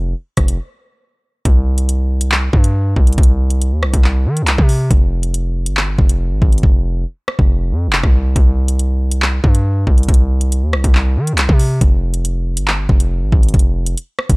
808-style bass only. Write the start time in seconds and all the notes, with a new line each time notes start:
Already playing: F1
0.37 F1
1.45 C2
2.53 G2
2.96 C2
3.18 C2
3.72 D#2
3.83 C2
3.94 C2
4.26 D#3
4.42 C2
4.58 C3
4.91 F1
5.66 G1
5.98 F1
6.31 G#1
6.42 G#1
6.63 F1
7.39 F1
7.71 F2
7.87 F1
8.04 C2
8.36 C2
9.44 G2
9.87 C2
10.09 C2
10.63 D#2
10.73 C2
10.84 C2
11.17 D#3
11.33 C2
11.49 C3
11.81 F1
12.57 G1
12.89 F1
13.22 G#1
13.32 G#1
13.54 F1
14.29 F1